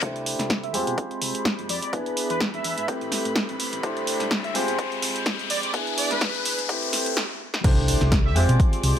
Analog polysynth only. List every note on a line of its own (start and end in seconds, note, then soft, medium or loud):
0.63 0.78 E5 medium
1.70 1.78 D5 medium
1.83 1.89 D5 medium
2.30 2.45 B4 medium
2.54 2.88 E5 medium
4.44 4.59 E5 medium
5.50 5.59 D5 medium
5.63 5.70 D5 medium
5.98 6.08 D5 medium
6.11 6.59 B4 medium
8.25 8.40 E5 medium